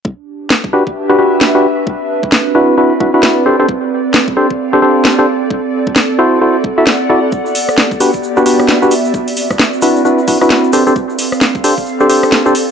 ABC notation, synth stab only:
X:1
M:4/4
L:1/16
Q:"Swing 16ths" 1/4=132
K:Em
V:1 name="Synth stab"
z6 [DFGB] z2 [DFGB] [DFGB]3 [DFGB] z2 | z6 [DEFB]2 [DEFB] z [DEFB] [DEFB]3 [DGAc] [DGAc] | z6 [DGAc] z2 [DGAc] [DGAc]3 [DGAc] z2 | z6 [EFAc]2 [EFAc] z2 [EFAe] z2 [EFAd] z |
z6 [DFGB] z2 [DFGB] [DFGB]3 [DFGB] z2 | z6 [DEFB]2 [DEFB] z [DEFB] [DEFB]3 [DGAc] [DGAc] | z6 [DGAc] z2 [DGAc] [DGAc]3 [DGAc] z2 |]